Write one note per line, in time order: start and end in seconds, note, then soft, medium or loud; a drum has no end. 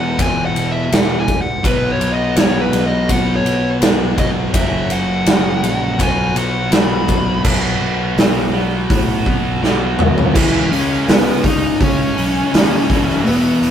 0.00 0.17 E2 medium
0.00 0.88 E2 medium
0.00 0.89 B2 medium
0.00 0.89 E3 medium
0.00 0.21 F#5 medium
0.19 0.53 E1 medium
0.19 0.43 G#5 medium
0.19 kick medium
0.19 ride medium
0.46 0.69 F#5 medium
0.55 0.89 E1 medium
0.55 ride medium
0.72 0.92 E5 medium
0.90 1.60 E1 medium
0.90 1.25 E2 medium
0.90 1.26 B2 medium
0.90 1.26 E3 medium
0.90 1.18 F#5 medium
0.90 snare loud
0.90 ride medium
1.20 1.40 G#5 medium
1.28 kick medium
1.28 ride medium
1.41 1.63 F#5 medium
1.63 1.98 B1 medium
1.63 4.15 B2 medium
1.63 4.18 F#3 medium
1.63 4.16 B3 loud
1.63 1.91 B4 medium
1.63 kick loud
1.63 ride medium
1.92 2.13 C#5 medium
1.99 2.34 B1 medium
1.99 ride medium
2.13 2.37 D#5 medium
2.35 2.70 B1 loud
2.35 2.59 C#5 medium
2.35 snare loud
2.35 ride medium
2.61 2.83 B4 medium
2.72 3.07 B1 medium
2.72 ride medium
2.86 3.11 D#5 medium
3.09 3.43 B1 medium
3.09 3.32 F#5 medium
3.09 kick medium
3.09 ride medium
3.36 3.68 C#5 medium
3.44 3.79 B1 medium
3.44 ride medium
3.81 4.15 B1 medium
3.81 snare loud
3.81 ride medium
4.17 4.52 B1 medium
4.17 4.53 B2 medium
4.17 4.55 F#3 medium
4.17 4.52 B3 medium
4.17 4.29 D#5 medium
4.17 kick medium
4.17 ride medium
4.53 4.88 F#1 medium
4.53 5.97 F#2 medium
4.53 5.97 C#3 medium
4.53 5.97 F#3 loud
4.53 4.92 E5 medium
4.53 kick loud
4.53 ride loud
4.90 5.25 F#1 medium
4.90 6.02 F#5 medium
4.90 ride medium
5.26 5.61 F#1 medium
5.26 snare loud
5.26 ride medium
5.62 5.99 A#1 medium
5.62 ride medium
5.97 6.34 B1 medium
5.97 7.41 B2 medium
5.97 7.42 F#3 loud
5.97 7.42 B3 medium
5.97 kick medium
5.97 ride medium
6.03 6.35 G#5 medium
6.35 6.70 B1 medium
6.35 6.74 F#5 medium
6.35 ride medium
6.71 7.40 B1 medium
6.71 7.41 B5 medium
6.71 snare loud
6.71 ride medium
7.08 kick medium
7.08 ride medium
7.44 7.79 B1 medium
7.44 9.23 B2 medium
7.44 9.24 F#3 medium
7.44 9.24 B3 medium
7.44 kick loud
7.44 crash loud
7.81 8.15 B1 medium
8.16 8.85 B1 loud
8.16 snare loud
8.16 open hi-hat medium
8.54 9.61 B2 medium
8.54 9.61 F#3 medium
8.54 9.60 B3 medium
8.90 9.24 A2 medium
8.90 kick loud
8.90 open hi-hat medium
9.25 9.60 B1 medium
9.25 9.60 B2 medium
9.25 9.60 F#3 medium
9.25 9.60 B3 medium
9.25 kick medium
9.61 9.96 B1 medium
9.61 10.32 B2 medium
9.61 10.33 F#3 medium
9.61 10.33 B3 medium
9.61 snare medium
9.98 10.32 B1 medium
9.98 mid tom medium
10.18 floor tom medium
10.34 10.60 C#2 medium
10.34 11.41 C#3 loud
10.34 12.87 C#3 medium
10.34 10.69 E3 medium
10.34 11.42 G#3 loud
10.34 12.88 G#3 medium
10.34 11.43 C#4 loud
10.34 12.88 C#4 loud
10.34 10.69 E4 loud
10.34 11.42 E4 loud
10.34 kick loud
10.34 crash loud
10.72 10.96 C#2 medium
10.72 11.05 C#4 medium
10.72 11.06 C#5 medium
10.72 open hi-hat medium
11.08 11.32 C#2 loud
11.08 11.42 B3 medium
11.08 11.43 B4 medium
11.08 snare loud
11.08 open hi-hat medium
11.43 11.68 C#2 medium
11.43 12.51 C#3 medium
11.43 12.51 G#3 medium
11.43 12.51 C#4 medium
11.43 11.82 D#4 medium
11.43 12.50 E4 medium
11.43 kick medium
11.43 open hi-hat medium
11.47 11.79 D#5 medium
11.80 12.05 C#3 loud
11.80 13.31 C#4 medium
11.80 13.23 C#5 medium
11.80 kick loud
11.80 open hi-hat medium
12.17 12.42 B1 medium
12.17 12.52 C#3 medium
12.17 12.52 G#3 medium
12.17 12.51 C#4 medium
12.17 open hi-hat medium
12.52 12.78 D#2 medium
12.52 12.87 C#3 medium
12.52 12.87 G#3 medium
12.52 12.88 G#3 medium
12.52 12.88 C#4 medium
12.52 12.89 C#4 medium
12.52 12.88 E4 medium
12.52 snare loud
12.52 open hi-hat medium
12.88 13.14 E1 medium
12.88 13.71 E2 medium
12.88 13.71 B2 loud
12.88 13.71 E3 loud
12.88 13.71 F#3 medium
12.88 13.71 B3 medium
12.88 13.71 E4 medium
12.88 kick loud
12.88 open hi-hat medium
13.09 snare soft
13.24 13.50 E1 medium
13.24 13.71 B3 medium
13.24 13.71 B4 medium
13.24 open hi-hat medium
13.62 13.71 E1 medium
13.62 open hi-hat medium